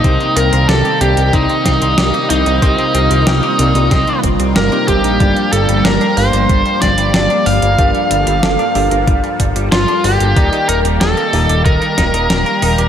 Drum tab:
HH |xxxxxxxxxxxxxxxx|xxxxxxxxxxxxxxxx|xxxxxxoxxxxxxxox|xxxxxxoxxxxxxxox|
SD |----o-----o-o---|----o---o---o---|----o-----o-o---|----o-------o---|
BD |o-------o-o-----|o-------o-o---o-|o-------o-o-----|o-------o-o-----|

HH |xxxxxxoxxxxxxxox|
SD |----o-----o-o---|
BD |o-------o-o-----|